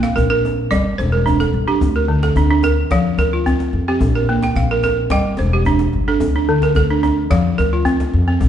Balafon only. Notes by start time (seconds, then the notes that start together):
Already playing: A#3 G5
0.03 F5
0.16 A#4
0.30 A#4
0.71 G3 D5
0.98 C5
1.12 A#4
1.26 D4
1.40 A4
1.68 D4 G4
1.96 A#4
2.08 D3
2.23 A4
2.37 D4
2.51 D4
2.64 A#4
2.92 F3 F5
3.19 A#4
3.33 F4
3.46 C4
3.88 C4 G4
4.15 A#4
4.29 A#3
4.44 G5
4.56 F5
4.71 A#4
4.84 A#4
5.12 G3 G5
5.39 C5
5.53 G4
5.66 D4
6.08 D4 A4
6.36 D4
6.49 D3
6.63 A#4
6.76 A4
6.90 D4
7.03 D4
7.30 F3 F5
7.58 A#4
7.73 F4
7.85 C4
8.28 C4